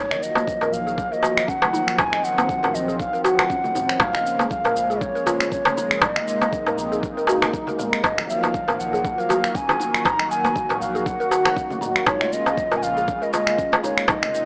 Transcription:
Already playing: D#1 D#3 F3 F#3 A#3 C#5
0.11 D#5, finger snap, muted conga, high conga, shaker
0.23 D#5, shaker
0.35 D#1 A#3, darbuka ka, high conga, shaker
0.47 kick, muted conga, shaker
0.61 A#4, darbuka tek, low conga, shaker
0.73 A#1 F5, shaker
0.87 G#4, shaker
0.98 kick, muted conga, shaker
1.12 A#4 D#5, shaker
1.23 D#1 F#4, darbuka tek, high conga, shaker
1.37 finger snap, muted conga, shaker
1.48 C#4 F#5, kick, shaker
1.62 D#1, darbuka ka, high conga, shaker
1.73 D#4, muted conga, shaker
1.88 finger snap, shaker
1.99 D#1 C4 D#4 G#5, kick, darbuka tek, low conga, shaker
2.13 D#5, finger snap, muted conga, high conga, shaker
2.24 F#5, shaker
2.38 D#1 A#3, darbuka ka, high conga, shaker
2.49 kick, muted conga, shaker
2.63 A#4, darbuka tek, low conga, shaker
2.74 A#1 D#5, shaker
2.88 G#4, shaker
3.00 F5, kick, muted conga, shaker
3.13 A#4, shaker
3.24 D#1 F#4 G#5, darbuka tek, shaker
3.29 F#5
3.39 finger snap, darbuka ka, muted conga, high conga, shaker
3.50 C#4, kick, shaker
3.64 D#1, high conga, shaker
3.75 D#4, muted conga, high conga, low conga, shaker
3.89 finger snap, shaker
4.00 D#1 C#3 G#3 A#3 D#4 F5, kick, darbuka tek, low conga, shaker
4.13 D#5, finger snap, muted conga, high conga, shaker
4.26 shaker
4.39 D#1 A#3, darbuka ka, high conga, shaker
4.50 F5, kick, muted conga, shaker
4.64 A#4, darbuka tek, low conga, shaker
4.76 A#1, shaker
4.90 G#4, shaker
5.01 C#5, kick, muted conga, shaker
5.15 A#4, shaker
5.26 D#1 F4, high conga, darbuka tek, shaker
5.40 finger snap, muted conga, shaker
5.51 C#4 C#5, kick, shaker
5.65 D#1, darbuka ka, high conga, shaker
5.77 D#4, muted conga, shaker
5.91 finger snap, shaker
6.01 D#1 C3 D#4 D5, kick, darbuka tek, low conga, shaker
6.15 D#5, finger snap, muted conga, high conga, shaker
6.28 shaker
6.41 D#1 A#3, darbuka ka, high conga, shaker
6.53 kick, muted conga, shaker
6.66 A#4, darbuka tek, low conga, shaker
6.77 A#1, shaker
6.92 G#4, shaker
7.03 kick, muted conga, shaker
7.17 A#4, shaker
7.27 D#1 F#4, darbuka tek, shaker
7.42 finger snap, darbuka ka, muted conga, high conga, shaker
7.53 D#4, kick, shaker
7.67 D#1 A#4, high conga, shaker
7.79 A#4, muted conga, high conga, low conga, shaker
7.93 finger snap, shaker
8.03 D#1 D#3 F3 F#3 D#4 D#5, kick, darbuka tek, low conga, shaker
8.18 D#5, finger snap, muted conga, high conga, shaker
8.29 F5, shaker
8.43 D#1 A#3, darbuka ka, high conga, shaker
8.54 kick, muted conga, shaker
8.68 A#4, darbuka tek, low conga, shaker
8.79 A#1 F#5, shaker
8.93 G#4, shaker
9.05 kick, muted conga, shaker
9.18 A#4 F5, shaker
9.29 D#1 F#4, darbuka tek, high conga, shaker
9.44 finger snap, muted conga, shaker
9.55 C#4 G#5, kick, shaker
9.69 D#1, darbuka ka, high conga, shaker
9.80 D#4, muted conga, shaker
9.94 finger snap, shaker
10.05 D#1 D#4 F#4 A#5, kick, darbuka tek, low conga, shaker
10.19 D#5, finger snap, muted conga, high conga, shaker
10.31 G#5, shaker
10.44 D#1 A#3, darbuka ka, high conga, shaker
10.55 kick, muted conga, shaker
10.69 A#4, darbuka tek, low conga, shaker
10.81 A#1 F5, shaker
10.95 G#4, shaker
11.06 F#5, kick, muted conga, shaker
11.20 A#4, shaker
11.31 D#1 F#4, darbuka tek, shaker
11.45 finger snap, muted conga, darbuka ka, high conga, shaker
11.56 C#4, kick, shaker
11.71 D#1, high conga, shaker
11.81 D#4, muted conga, high conga, low conga, shaker
11.96 finger snap, shaker
12.07 D#1 C#3 G#3 D#4 F4 C#5, kick, darbuka tek, low conga, shaker
12.21 D#5, finger snap, muted conga, high conga, shaker
12.33 D#5, shaker
12.46 D#1 A#3, darbuka ka, high conga, shaker
12.58 kick, muted conga, shaker
12.71 A#4, darbuka tek, low conga, shaker
12.77 G#5
12.83 A#1 F5, shaker
12.97 G#4, shaker
13.08 kick, muted conga, shaker
13.22 A#4 D#5, shaker
13.33 D#1 F4 D#5, high conga, darbuka tek, shaker
13.47 finger snap, muted conga, shaker
13.58 C#4, kick, shaker
13.72 D#1, darbuka ka, high conga, shaker
13.83 D#4 C#5, muted conga, shaker
13.98 finger snap, shaker
14.08 D#1 C3 D#4 D#5, kick, darbuka tek, low conga, shaker
14.22 D#5, finger snap, muted conga, high conga, shaker
14.35 shaker

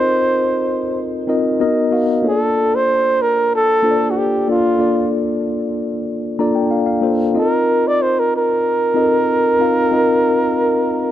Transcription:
Already playing: C4 D#4 F4 A4 A#4 C5 D#5
1.27 C4 D#4 F4 A#4 D#5
1.60 B3 D#4 F#4 A#4 D#5
1.91 B3 D#4 F#4 A#4 F5
2.22 A#3 D4 F4 A4 C#5
2.28 A4 D5
2.75 C5
3.22 A#4
3.55 A4
3.83 A#3 D4 F4 A4 C5
3.91 D5
4.11 F#4
4.18 G4
4.48 A#3 D4 F4 A4 D5
4.78 A#3 D4 F4 A4 D5
6.39 A#3 D4 F4 A4 D5 A#5
6.55 G5
6.71 F5
6.86 F5
7.01 A#3 D4 F4 A4 C5
7.34 C4 D#4 F4 A4 D#5
7.39 A#4
7.88 D5
8.02 C5
8.19 A#4
8.36 A#4
8.94 C4 D#4 F4 A4 D#5
9.02 A#4
9.59 C4 D#4 F4 A#4 F5
9.92 C4 D#4 F4 A#4 D#5

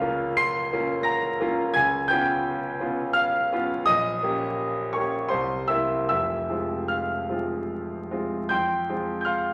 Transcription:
Already playing: C#2 F5 F6
0.01 A#3 C#4 F4
0.37 C6 C7
0.73 A#3 C#4 F4
1.03 A#5 A#6
1.40 A#3 C#4 F4
1.74 C#2 G#5 G#6
2.08 B3 C#4 F4 G5 G6
2.80 B3 C#4 F4
3.13 F5 F6
3.52 B3 C#4 F4
3.85 A#1 D#5 D#6
4.23 A#3 C#4 G4
4.93 A#3 C#4 G4 C#5 C#6
5.28 C2 C5 C6
5.68 A#3 C4 E4 E5 E6
6.09 F1 F2 E5 E6
6.50 G#3 C4 F4
6.88 F5 F6
7.29 G#3 C4 F4
8.11 G#3 C4 F4
8.49 F2 G5 C6 G6
8.89 G#3 C4 F4
9.21 F6 G6
9.26 F5 C6

